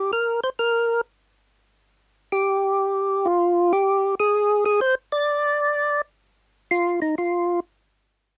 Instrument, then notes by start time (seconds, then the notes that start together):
tonewheel organ
Already playing: G4
0.13 A#4
0.44 C5
0.59 A#4
2.32 G4
3.25 F4
3.73 G4
4.20 G#4
4.66 G#4
4.81 C5
5.12 D5
6.71 F4
7.02 D#4
7.18 F4